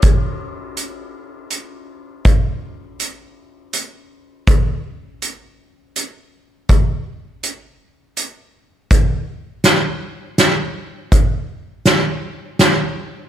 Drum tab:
HH |x-x-x-|x-x-x-|x-x-x-|x-x-x-|
SD |------|------|------|------|
BD |o-----|o-----|o-----|o-----|

HH |x-x-x-|x-x-x-|
SD |--o-o-|--o-o-|
BD |o-----|o-----|